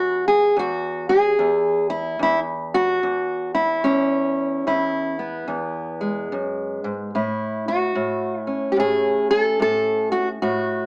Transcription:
0.00 0.56 E2 medium
0.00 0.27 F#4 loud
0.28 0.57 G#4 medium
0.57 1.38 E2 medium
0.57 1.09 F#4 medium
1.09 1.89 G#4 medium
1.39 2.19 E2 medium
1.90 2.20 E4 medium
2.19 3.02 E2 medium
2.19 2.39 E4 medium
2.74 3.54 F#4 loud
3.03 3.83 E2 medium
3.55 4.66 E4 medium
3.84 4.66 E2 medium
3.84 5.17 C#4 medium
4.67 5.46 E2 medium
4.67 6.31 E4 medium
5.19 7.13 B3 soft
5.48 6.30 E2 medium
6.01 7.10 G#3 soft
6.32 6.83 F#2 medium
6.84 7.14 G#2 medium
7.15 7.95 A2 medium
7.15 7.68 E4 soft
7.68 8.40 F#4 medium
7.95 8.76 A2 medium
8.40 8.72 E4 medium
8.47 10.38 C#4 soft
8.72 8.77 G4 medium
8.76 9.58 A2 medium
8.76 9.30 G#4 loud
9.31 9.60 A4 loud
9.59 10.41 A2 medium
9.59 10.11 A4 loud
10.12 10.28 F#4 medium
10.42 10.86 A2 medium
10.42 10.86 F#4 medium

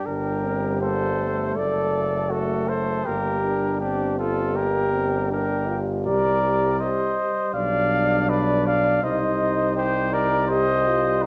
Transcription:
0.06 1.52 G1 soft
0.06 1.58 G3 soft
0.06 0.46 D4 soft
0.06 0.81 G4 medium
0.06 0.81 A#4 medium
0.44 0.83 C4 soft
0.81 1.19 A#3 soft
0.81 1.55 A4 medium
0.81 1.58 C5 medium
1.20 3.03 A3 soft
1.56 3.03 F#1 soft
1.56 3.05 A3 soft
1.56 2.31 A4 soft
1.56 2.33 D5 medium
2.30 2.69 F#4 soft
2.30 2.71 A4 medium
2.68 3.06 A4 medium
2.68 3.08 C5 medium
3.05 6.08 G1 soft
3.05 8.71 G3 soft
3.05 3.43 A#3 soft
3.05 3.80 G4 soft
3.05 3.80 A#4 medium
3.44 3.81 D4 soft
3.81 4.57 C4 soft
3.81 4.18 D4 soft
3.81 4.18 G4 medium
4.19 4.57 F4 medium
4.19 4.58 A4 medium
4.55 4.95 A#3 soft
4.55 5.31 G4 medium
4.55 5.31 A#4 medium
4.94 5.32 C4 soft
5.31 5.70 D4 soft
5.31 5.79 G4 medium
5.31 5.79 A#4 medium
5.69 6.09 F4 medium
6.06 7.27 C2 soft
6.06 7.27 G4 soft
6.06 6.76 A#4 medium
6.06 6.82 D5 medium
6.79 7.52 C5 medium
6.79 7.54 D#5 medium
7.54 8.99 B1 medium
7.54 8.99 D4 medium
7.54 8.31 D5 medium
7.54 8.31 F5 medium
8.29 8.68 B4 medium
8.29 8.66 D5 medium
8.66 9.02 D5 medium
8.66 9.05 F5 medium
9.03 11.26 C2 medium
9.03 11.26 G3 medium
9.03 10.48 D#4 medium
9.03 9.75 C5 medium
9.03 9.76 D#5 medium
9.76 10.12 G4 medium
9.76 10.15 C5 medium
10.13 10.48 A#4 medium
10.13 10.50 D5 medium
10.48 10.86 G4 medium
10.48 11.25 C5 medium
10.48 11.22 D#5 medium
10.88 11.26 F4 medium
11.23 11.26 D#4 medium

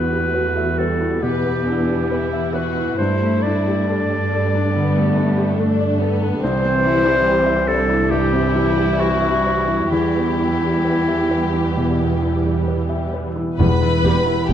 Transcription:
0.00 1.18 E2 soft
0.00 2.94 E2 soft
0.00 0.29 B3 soft
0.00 1.44 B3 soft
0.00 0.25 E4 soft
0.00 1.21 F#4 soft
0.00 0.80 B4 medium
0.12 0.47 G4 soft
0.33 0.77 A3 soft
0.33 0.69 B4 soft
0.57 0.92 E5 soft
0.77 1.20 G3 soft
0.77 1.24 A4 soft
0.77 1.14 B4 soft
1.01 1.35 E4 soft
1.21 1.57 B2 soft
1.21 2.98 E3 soft
1.21 2.98 B3 soft
1.21 2.55 G4 medium
1.21 1.63 B4 soft
1.44 1.79 B3 soft
1.66 2.10 D4 soft
1.66 2.01 E4 soft
1.89 2.24 G4 soft
2.10 2.54 E4 soft
2.10 2.46 B4 soft
2.33 2.68 E5 soft
2.53 2.98 F#4 soft
2.53 2.97 B4 soft
2.53 2.90 B4 soft
2.77 2.99 E4 soft
2.98 6.41 G2 soft
2.98 4.69 G2 soft
2.98 3.86 A3 soft
2.98 3.85 E4 soft
2.98 3.44 C5 medium
3.22 3.57 A3 soft
3.42 3.79 D4 soft
3.42 5.99 D5 medium
3.67 4.01 G4 soft
3.85 4.27 G3 soft
3.85 4.73 D4 soft
3.85 4.22 A4 soft
4.11 4.44 D5 soft
4.29 5.54 G3 soft
4.33 4.65 A4 soft
4.55 4.87 D4 soft
4.71 5.55 B3 soft
4.71 5.15 B3 soft
4.76 5.08 D3 soft
4.97 5.29 A3 soft
5.14 5.57 A3 soft
5.14 5.49 D4 soft
5.37 5.70 G4 soft
5.56 6.41 A3 soft
5.56 5.99 D4 soft
5.56 5.92 A4 soft
5.80 6.13 D5 soft
6.00 6.42 B3 medium
6.00 6.34 A4 soft
6.22 6.42 D4 soft
6.41 9.87 C2 soft
6.41 8.08 C2 soft
6.41 8.07 E3 medium
6.41 8.07 G3 medium
6.41 6.83 C4 soft
6.41 7.69 C5 medium
6.64 6.97 C4 soft
6.83 7.24 E4 medium
6.83 7.18 E4 soft
7.06 7.39 G4 soft
7.25 7.68 C4 medium
7.25 7.60 C5 soft
7.46 7.80 E5 soft
7.68 8.11 D4 soft
7.68 8.12 A4 medium
7.68 8.02 C5 soft
7.90 8.24 E4 soft
8.10 8.46 G2 soft
8.10 9.87 E3 soft
8.10 9.87 G3 medium
8.10 9.91 E4 medium
8.10 9.02 G4 medium
8.33 8.68 C4 soft
8.54 8.90 E4 soft
8.77 9.13 G4 soft
8.99 9.91 F#4 medium
8.99 9.36 C5 soft
9.22 9.59 E5 soft
9.45 9.82 C5 soft
9.68 9.91 E4 soft
9.91 13.40 E2 soft
9.91 11.74 E2 soft
9.91 13.36 E3 soft
9.91 13.36 G3 soft
9.91 12.65 E4 medium
9.91 13.11 G4 soft
10.16 10.53 B3 soft
10.39 10.76 E4 soft
10.62 10.99 G4 soft
10.85 11.22 B4 soft
11.08 11.45 E5 soft
11.31 11.68 B4 soft
11.54 11.91 E4 soft
11.77 12.14 B2 soft
12.00 12.37 B3 soft
12.22 12.59 E4 soft
12.45 12.82 G4 soft
12.67 13.05 B4 soft
12.89 13.28 E5 soft
13.13 13.51 B4 soft
13.36 13.59 E4 soft
13.59 13.68 E1 medium
13.59 14.53 E2 soft
13.59 14.53 E2 medium
13.59 13.68 E2 medium
13.59 13.69 G3 soft
13.59 13.68 B3 soft
13.59 14.45 B4 medium
13.59 14.46 B5 medium
13.82 14.18 E4 soft
14.04 14.13 E1 soft
14.04 14.12 E2 soft
14.04 14.14 G3 soft
14.04 14.14 B3 soft
14.04 14.40 G4 soft
14.26 14.53 E4 soft
14.49 14.53 E1 medium
14.49 14.53 E2 medium
14.49 14.53 B3 soft
14.49 14.53 G4 medium
14.49 14.53 G5 medium

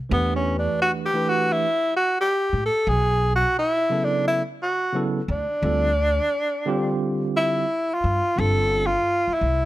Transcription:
0.09 0.66 E2 loud
0.09 1.08 E3 medium
0.09 1.08 A3 medium
0.09 0.33 B3 medium
0.09 1.09 D4 medium
0.09 1.09 G4 medium
0.09 1.10 B4 medium
0.36 0.56 C#4 medium
0.59 0.79 D4 medium
0.82 0.92 F#4 medium
1.05 1.30 G4 loud
1.13 1.64 E3 medium
1.13 1.65 A3 medium
1.13 1.65 D4 medium
1.13 1.66 G4 medium
1.13 1.66 B4 medium
1.29 1.54 F#4 medium
1.52 1.96 E4 loud
1.96 2.17 F#4 loud
2.21 2.62 G4 loud
2.53 2.69 A2 medium
2.65 2.90 A4 loud
2.87 3.42 B1 loud
2.87 3.34 G#4 loud
3.36 3.56 F#4 medium
3.58 4.06 E4 loud
3.90 4.41 C#3 medium
3.90 4.41 F#3 medium
3.90 4.41 B3 medium
3.90 4.42 E4 medium
3.90 4.42 A4 medium
4.04 4.26 D4 medium
4.28 4.42 E4 medium
4.63 5.01 F#4 medium
4.93 5.19 C#3 medium
4.93 5.20 F#3 medium
4.93 5.20 B3 medium
4.93 5.20 E4 medium
4.93 5.21 A4 medium
5.28 5.44 D2 medium
5.28 6.98 D4 loud
5.62 6.17 D2 loud
5.62 5.88 D3 medium
5.62 5.88 G3 medium
5.62 5.89 C4 medium
5.62 5.89 F4 medium
5.62 5.90 A4 medium
6.66 7.64 D3 medium
6.66 7.64 G3 medium
6.66 7.64 C4 medium
6.66 7.65 F4 medium
6.66 7.65 G4 loud
7.37 7.95 E4 loud
7.94 8.41 F4 loud
8.04 8.20 G2 medium
8.36 8.93 G1 loud
8.36 8.88 D3 medium
8.36 8.88 G3 medium
8.36 8.89 C4 medium
8.36 8.89 F4 medium
8.36 8.89 A4 medium
8.36 8.88 A4 loud
8.86 9.35 F4 loud
9.27 muted upright bass stroke medium
9.34 9.65 E4 medium
9.41 9.65 C2 medium

